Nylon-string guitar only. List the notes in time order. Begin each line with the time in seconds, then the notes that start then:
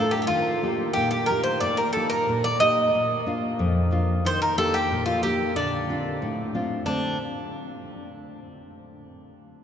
Already playing: A2 A3 D4 F4
0.30 D#3
0.62 A#3 D#4 G4
0.97 A#2
1.30 A#3 D#4 G4
1.63 A#2
1.97 A#3 D#4 G4
2.29 A#2
2.60 A#3 D#4 G4
2.95 A#2
3.26 A#3 D4 F4
3.59 F2
3.91 A#3 D4 F4
4.25 D#3
4.57 A#3 D#4 G4
4.92 A#2
5.24 A#3 D#4 G4
5.56 D3
5.90 C4 D4 F4
6.22 A2
6.55 C4 D4 F4
6.86 D3 A3 C4